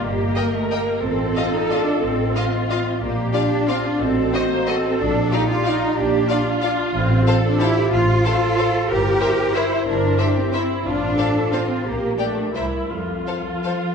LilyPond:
<<
  \new Staff \with { instrumentName = "Violin section" } { \time 3/4 \key bes \major \tempo 4 = 181 r4 g''4 g''4 | r4 f''4 f''4 | r4 f''4 f''4 | r4 f''4 f''4 |
r4 ees''4 ees''4 | r4 f''4 f''4 | r4 f''4 f''4 | \key f \major r4 f''4 f''4 |
r4 f''4 f''4 | r4 e''4 e''4 | r4 e''4 e''4 | r4 f''4 f''4 |
r4 g''4 e''4 | r4 f''4 f''4 | }
  \new Staff \with { instrumentName = "Violin section" } { \time 3/4 \key bes \major r4 <bes' ees''>4 <bes' ees''>4 | r4 <f' ees''>4 <f' ees''>4 | r4 <f' ees''>4 <f' ees''>4 | r4 <f' d''>4 <f' d''>4 |
r4 <fis' ees''>4 <fis' ees''>4 | r4 <f' d''>4 <f' d''>4 | r4 <f' d''>4 <f' d''>4 | \key f \major r4 <a' c''>4 <a' c''>4 |
r4 <a' c''>4 <a' c''>4 | r4 <bes' c''>4 <bes' c''>4 | r4 <bes' c''>4 <bes' c''>4 | r4 <a' c''>4 <a' c''>4 |
r4 <g' d''>4 <bes' c''>4 | r4 <a' c''>4 <a' c''>4 | }
  \new Staff \with { instrumentName = "French horn section" } { \time 3/4 \key bes \major << { ees''2. | ees''2.~ | ees''2. | d''2. |
ees''2. | d''2.~ | d''2. | \key f \major c''2.~ |
c''2. | c''2.~ | c''2. | c''2. |
bes'2. | a'2. | } \\ { g'2. | f'2.~ | f'2. | f'2. |
fis'2. | f'2.~ | f'2. | f'2.~ |
f'2. | e'2.~ | e'2. | f'2. |
g'2 e'4 | f'2. | } >> }
  \new Staff \with { instrumentName = "Viola section" } { \time 3/4 \key bes \major g'4 bes'2 | a'2.~ | a'4 f'2 | g'2 f'4 |
a'4 c''4 a'4~ | a'4 g'4 f'4 | g'4 f'2~ | \key f \major f'4 a'4 g'4 |
f'4 a'2 | bes'2 c''4 | bes'4 g'4 e'4 | f'4 a'4 f'4 |
g'4 d'4 e'4 | f'2. | }
  \new Staff \with { instrumentName = "Cello section" } { \time 3/4 \key bes \major bes4. a8 bes4 | c'4. ees'8 d'4 | c'2~ c'8 r8 | bes4 d'4 c'8 d'8 |
c'4. bes8 c'4 | d'4 ees'8 f'8 ees'4 | d'2~ d'8 r8 | \key f \major c'4. d'8 e'4 |
f'2. | g'2 e'4 | d'4. c'4 r8 | d'2 c'4 |
bes4 a4 g4 | g4 f2 | }
  \new Staff \with { instrumentName = "Double bass section" } { \clef bass \time 3/4 \key bes \major g,,4 r2 | a,,4 r2 | a,,4 r2 | bes,,4 r2 |
a,,4 r2 | bes,,4 r2 | bes,,4 r2 | \key f \major a,,4 r2 |
a,,4 r2 | g,,4 r2 | g,,4 r2 | a,,4 r2 |
bes,,4 r4 c,4 | f,4 r2 | }
>>